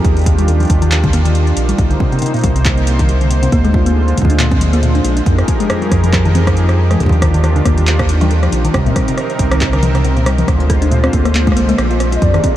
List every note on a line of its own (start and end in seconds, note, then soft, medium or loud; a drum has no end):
0.00 1.75 G4 medium
0.04 0.66 D#2 loud
0.04 1.77 D#3 medium
0.04 1.77 D4 medium
0.04 1.77 F4 medium
0.04 kick loud
0.04 closed hi-hat medium
0.17 closed hi-hat soft
0.19 closed hi-hat soft
0.22 closed hi-hat soft
0.24 kick loud
0.24 closed hi-hat soft
0.26 closed hi-hat medium
0.38 0.47 G3 medium
0.38 closed hi-hat medium
0.48 0.60 D#2 loud
0.48 closed hi-hat medium
0.60 0.68 F3 medium
0.60 closed hi-hat soft
0.63 closed hi-hat soft
0.65 closed hi-hat soft
0.67 1.53 D#2 loud
0.67 0.76 D#3 medium
0.67 kick loud
0.67 closed hi-hat soft
0.70 closed hi-hat medium
0.82 0.90 D#3 loud
0.82 closed hi-hat medium
0.91 1.02 D#3 loud
0.91 clap loud
0.91 closed hi-hat medium
1.04 1.09 D3 loud
1.04 kick loud
1.04 closed hi-hat soft
1.13 1.20 A#3 medium
1.13 closed hi-hat medium
1.25 1.34 D#3 medium
1.25 closed hi-hat medium
1.35 closed hi-hat medium
1.47 closed hi-hat soft
1.57 1.74 A#1 loud
1.57 closed hi-hat loud
1.69 1.77 G3 medium
1.69 closed hi-hat medium
1.78 1.90 C2 loud
1.78 1.95 C2 loud
1.78 3.51 C3 medium
1.78 3.51 A#3 medium
1.78 3.51 D#4 medium
1.78 5.23 C5 medium
1.78 kick loud
1.78 closed hi-hat medium
1.91 1.99 D3 medium
1.91 closed hi-hat soft
2.00 2.06 C3 medium
2.00 kick loud
2.12 2.21 C3 loud
2.12 closed hi-hat soft
2.19 closed hi-hat soft
2.22 2.32 C3 loud
2.22 closed hi-hat medium
2.26 closed hi-hat soft
2.34 2.39 A#2 loud
2.34 closed hi-hat soft
2.36 closed hi-hat soft
2.39 closed hi-hat soft
2.41 closed hi-hat soft
2.44 3.49 C2 loud
2.44 2.50 G3 medium
2.44 kick loud
2.44 closed hi-hat medium
2.56 2.65 C3 medium
2.56 closed hi-hat medium
2.65 kick loud
2.65 clap loud
2.65 closed hi-hat medium
2.78 closed hi-hat soft
2.87 closed hi-hat medium
2.99 3.08 D#3 medium
2.99 kick medium
2.99 closed hi-hat medium
3.09 3.20 C2 loud
3.09 closed hi-hat medium
3.21 3.29 D3 medium
3.21 closed hi-hat soft
3.31 3.37 C3 medium
3.31 closed hi-hat medium
3.43 3.52 C3 loud
3.43 closed hi-hat medium
3.52 4.14 D2 loud
3.52 5.25 D3 medium
3.52 5.25 G#3 medium
3.52 3.63 A#3 loud
3.52 5.24 F4 medium
3.52 kick loud
3.52 closed hi-hat medium
3.65 3.70 G#3 loud
3.65 closed hi-hat soft
3.74 3.80 F4 medium
3.74 kick loud
3.86 3.95 A#3 medium
3.86 closed hi-hat medium
4.08 closed hi-hat soft
4.18 5.01 D2 loud
4.18 kick soft
4.18 closed hi-hat medium
4.22 kick medium
4.25 kick medium
4.30 4.38 D4 medium
4.30 closed hi-hat medium
4.39 4.51 A#2 loud
4.39 clap loud
4.39 closed hi-hat soft
4.51 4.60 C4 medium
4.51 kick loud
4.51 closed hi-hat soft
4.61 4.72 F3 medium
4.61 closed hi-hat medium
4.73 4.81 A#3 loud
4.73 closed hi-hat soft
4.83 4.93 A#2 loud
4.83 closed hi-hat medium
4.95 5.00 D4 medium
4.95 closed hi-hat soft
5.04 5.22 A#1 loud
5.04 5.11 F4 medium
5.04 closed hi-hat medium
5.17 5.26 D4 medium
5.17 closed hi-hat medium
5.26 5.43 F2 loud
5.26 6.98 F3 medium
5.26 6.98 D#4 medium
5.26 8.71 G4 medium
5.26 6.98 G#4 medium
5.26 6.98 A#4 medium
5.26 kick loud
5.26 closed hi-hat medium
5.38 cross-stick soft
5.38 closed hi-hat soft
5.48 kick loud
5.48 closed hi-hat medium
5.60 5.68 G#3 medium
5.60 closed hi-hat soft
5.70 5.81 F2 loud
5.70 cross-stick medium
5.70 closed hi-hat medium
5.82 5.90 G3 medium
5.82 closed hi-hat soft
5.92 6.96 F2 loud
5.92 5.98 F3 medium
5.92 kick loud
5.92 cross-stick soft
5.92 closed hi-hat medium
6.04 6.12 F3 loud
6.04 closed hi-hat soft
6.13 6.24 F3 loud
6.13 kick loud
6.13 cross-stick soft
6.13 clap loud
6.13 closed hi-hat soft
6.25 6.30 D#3 loud
6.25 closed hi-hat soft
6.35 6.41 C4 medium
6.35 closed hi-hat medium
6.35 low conga medium
6.47 6.56 F3 medium
6.47 kick medium
6.47 cross-stick medium
6.47 closed hi-hat soft
6.57 closed hi-hat medium
6.69 cross-stick medium
6.69 closed hi-hat soft
6.91 6.99 G#3 medium
6.91 cross-stick soft
6.91 closed hi-hat soft
6.91 low conga medium
7.00 7.12 D#2 loud
7.00 7.62 D#2 loud
7.00 8.72 D#3 medium
7.00 8.72 D4 medium
7.00 8.72 F4 medium
7.00 kick medium
7.00 closed hi-hat soft
7.03 kick medium
7.06 kick medium
7.09 7.21 F3 medium
7.09 kick medium
7.09 closed hi-hat soft
7.22 7.28 D#3 medium
7.22 kick loud
7.22 cross-stick medium
7.22 closed hi-hat medium
7.34 7.42 D#3 loud
7.34 closed hi-hat soft
7.44 7.54 D#3 loud
7.44 cross-stick medium
7.44 closed hi-hat medium
7.56 7.61 D3 loud
7.56 closed hi-hat soft
7.65 8.49 D#2 loud
7.65 7.72 A#3 medium
7.65 kick loud
7.65 cross-stick medium
7.65 closed hi-hat medium
7.78 7.87 D#3 medium
7.78 closed hi-hat soft
7.87 clap loud
7.87 closed hi-hat soft
7.99 kick loud
7.99 cross-stick medium
7.99 closed hi-hat soft
8.09 closed hi-hat medium
8.21 8.29 G3 medium
8.21 cross-stick soft
8.21 closed hi-hat soft
8.21 low conga medium
8.31 8.42 D#2 loud
8.31 closed hi-hat soft
8.43 8.51 F3 medium
8.43 cross-stick medium
8.43 closed hi-hat soft
8.52 8.69 A#1 loud
8.52 8.59 D#3 medium
8.52 closed hi-hat medium
8.65 8.74 D#3 loud
8.65 closed hi-hat soft
8.74 8.91 C2 loud
8.74 10.46 C3 medium
8.74 8.85 C3 loud
8.74 10.46 C4 medium
8.74 10.46 D#4 medium
8.74 10.46 A#4 medium
8.74 kick loud
8.74 cross-stick medium
8.74 closed hi-hat medium
8.86 8.91 A#2 loud
8.86 closed hi-hat soft
8.96 9.02 G3 medium
8.96 kick loud
8.96 cross-stick medium
8.96 closed hi-hat medium
9.08 9.17 C3 medium
9.08 closed hi-hat medium
9.18 cross-stick medium
9.18 closed hi-hat medium
9.30 closed hi-hat soft
9.39 10.44 C2 loud
9.39 kick loud
9.39 closed hi-hat medium
9.51 9.60 D#3 medium
9.51 cross-stick medium
9.51 closed hi-hat soft
9.61 9.73 C2 loud
9.61 kick loud
9.61 clap loud
9.61 closed hi-hat soft
9.73 9.82 D3 medium
9.73 cross-stick medium
9.73 closed hi-hat soft
9.83 9.89 C3 medium
9.83 closed hi-hat medium
9.83 low conga loud
9.95 10.03 C3 loud
9.95 cross-stick medium
9.95 closed hi-hat soft
10.04 10.15 C3 loud
10.04 closed hi-hat medium
10.17 10.22 A#2 loud
10.17 closed hi-hat soft
10.26 10.33 G3 medium
10.26 cross-stick medium
10.26 closed hi-hat medium
10.38 10.48 C3 medium
10.38 closed hi-hat medium
10.38 low conga loud
10.48 11.09 D2 loud
10.48 12.20 D3 medium
10.48 12.20 G#3 medium
10.48 12.20 F4 medium
10.48 12.20 C5 medium
10.48 kick loud
10.48 cross-stick medium
10.48 closed hi-hat medium
10.60 closed hi-hat soft
10.70 kick loud
10.70 cross-stick medium
10.70 closed hi-hat medium
10.82 10.90 D4 medium
10.82 closed hi-hat medium
10.91 11.03 A#2 loud
10.91 closed hi-hat medium
11.04 11.12 C4 medium
11.04 cross-stick medium
11.04 closed hi-hat soft
11.13 11.56 D2 loud
11.13 11.20 A#3 medium
11.13 kick loud
11.13 closed hi-hat medium
11.25 11.34 A#3 loud
11.25 cross-stick medium
11.25 closed hi-hat medium
11.35 11.45 A#3 loud
11.35 clap loud
11.35 closed hi-hat medium
11.47 11.52 G#3 loud
11.47 kick loud
11.47 closed hi-hat soft
11.52 cross-stick medium
11.57 11.74 C2 medium
11.57 11.67 A#3 loud
11.57 closed hi-hat medium
11.69 11.78 A#3 loud
11.69 closed hi-hat medium
11.69 low conga medium
11.78 12.18 A#1 loud
11.78 cross-stick medium
11.78 closed hi-hat medium
11.91 11.99 F4 medium
11.91 closed hi-hat soft
12.00 cross-stick medium
12.00 closed hi-hat medium
12.12 12.21 F4 medium
12.12 12.23 D#5 medium
12.12 closed hi-hat medium
12.22 12.39 F2 loud
12.22 12.57 F3 medium
12.22 12.32 F3 loud
12.22 12.57 D#4 medium
12.22 12.57 G4 medium
12.22 12.57 G#4 medium
12.22 12.57 A#4 medium
12.22 12.57 D5 loud
12.22 kick loud
12.22 closed hi-hat medium
12.34 12.39 D#3 loud
12.34 cross-stick medium
12.34 closed hi-hat soft
12.44 12.50 C4 medium
12.44 kick loud
12.44 closed hi-hat medium